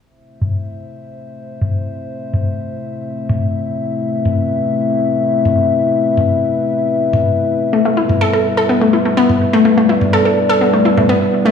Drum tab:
T2 |---o---------o--|---o-------o----|---o---------o--|---o-------o----|

T2 |---o---------o--|---o-------o----|